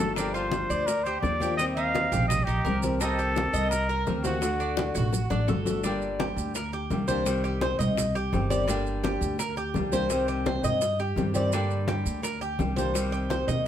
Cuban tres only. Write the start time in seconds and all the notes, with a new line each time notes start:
Already playing: A4
0.17 D4
0.34 F4
0.70 D5
1.06 G4
1.42 G4
1.77 D#4
2.12 G4
2.47 D#4
2.65 A#4
3.02 D#4
3.19 G4
3.54 D#5
3.89 A#4
4.25 F#4
4.60 D4
4.95 F#4
5.30 D4
5.48 A4
5.84 D4
6.20 G4
6.55 A#4
6.73 G4
7.08 C5
7.44 G4
7.62 C5
7.79 D#5
8.15 G4
8.50 D5
8.68 D4
9.04 G4
9.39 A#4
9.57 G4
9.93 C5
10.28 G4
10.46 C5
10.64 D#5
11.00 G4
11.36 D5
11.53 D4
11.88 G4
12.23 A#4
12.41 G4
12.76 C5
13.12 G4
13.30 C5
13.48 D#5